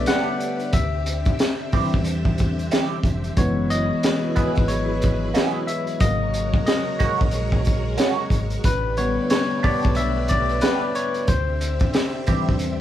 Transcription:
Already playing: tine electric piano D3 G3 B3 B4 C#5 D5 E5, string machine A3 D4 G4 B4
0.06 clean electric guitar B3 D4 G4, tine electric piano F#5, snare, closed hi-hat
0.40 closed hi-hat
0.60 closed hi-hat
0.73 fingered electric bass D2, string machine D3 C4 E5, tine electric piano E5, kick, closed hi-hat
1.06 closed hi-hat
1.25 kick, closed hi-hat
1.39 snare, closed hi-hat
1.72 tine electric piano E3 G3 C4, clean electric guitar C4 E4 G4, muted fingered electric bass stroke, kick, open hi-hat
1.94 fingered electric bass E2, kick
2.04 closed hi-hat
2.25 kick
2.38 kick, closed hi-hat
2.59 closed hi-hat
2.71 clean electric guitar C4 E4 G4, snare, closed hi-hat
3.03 fingered electric bass F1, kick, closed hi-hat
3.24 closed hi-hat
3.37 fingered electric bass F#1, tine electric piano E3 G#3 B3 C#5, string machine F#3 E4 G#4 B4, kick, closed hi-hat
3.70 tine electric piano D#5, closed hi-hat
4.03 snare, closed hi-hat
4.35 clean electric guitar B3 E4 G#4, tine electric piano B4, muted fingered electric bass stroke, kick, closed hi-hat
4.55 fingered electric bass G#1, kick, closed hi-hat
4.68 tine electric piano C#5, closed hi-hat
5.02 kick, closed hi-hat
5.34 clean electric guitar B3 E4 G#4, snare, closed hi-hat
5.67 tine electric piano E5, closed hi-hat
5.87 closed hi-hat
6.00 fingered electric bass G#1, tine electric piano C#3 F#3 A#3 D#5, string machine G#3 F#4 A#4 C#5, kick, closed hi-hat
6.34 closed hi-hat
6.54 kick
6.66 tine electric piano D#5, snare, closed hi-hat
6.99 clean electric guitar A#3 C#4 F#4, muted fingered electric bass stroke, kick, closed hi-hat
7.21 fingered electric bass A#1, kick
7.31 closed hi-hat
7.52 kick
7.65 kick, closed hi-hat
7.97 clean electric guitar A#3 C#4 F#4, snare, closed hi-hat
8.30 fingered electric bass G#1, kick, closed hi-hat
8.50 closed hi-hat
8.64 fingered electric bass A1, string machine A3 D4 G4 B4, tine electric piano B4, kick, closed hi-hat
8.97 tine electric piano D3 G3 B3 C#5, closed hi-hat
9.30 tine electric piano C#5, snare, closed hi-hat
9.63 clean electric guitar B3 D4 G4, tine electric piano D5, muted fingered electric bass stroke, kick, open hi-hat
9.82 fingered electric bass B1, kick, closed hi-hat
9.95 tine electric piano E5, closed hi-hat
10.28 tine electric piano D5, kick, closed hi-hat
10.49 closed hi-hat
10.61 clean electric guitar B3 D4 G4, tine electric piano B4, snare, closed hi-hat
10.95 tine electric piano C#5, closed hi-hat
11.14 closed hi-hat
11.28 fingered electric bass D2, string machine D3 C4 G4 E5, tine electric piano C5, kick, closed hi-hat
11.61 closed hi-hat
11.79 kick, closed hi-hat
11.94 snare, closed hi-hat
12.27 tine electric piano E3 G3 C4, clean electric guitar C4 E4 G4, muted fingered electric bass stroke, kick, closed hi-hat
12.49 fingered electric bass E2, kick
12.59 closed hi-hat

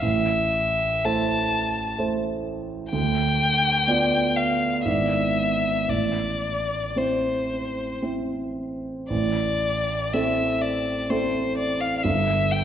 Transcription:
0.01 grand piano A1, violin E5
1.05 grand piano A3 E4 C5, violin A5
1.99 grand piano A3 E4 C5
2.91 grand piano D2, violin G5
3.87 grand piano B3 F4 D5
4.36 violin F5
4.85 grand piano G#1 B3 E4 D5, violin E5
5.88 grand piano A1, violin D5
6.96 grand piano C4 E4 C5, violin C5
8.02 grand piano C4 E4 C5
9.10 grand piano A1, violin D5
10.13 grand piano C4 E4 A4, violin E5
10.62 violin D5
11.10 grand piano C4 E4 A4, violin C5
11.58 violin D5
11.81 violin F5
11.98 violin F5
12.04 grand piano G1, violin E5
12.52 violin G5

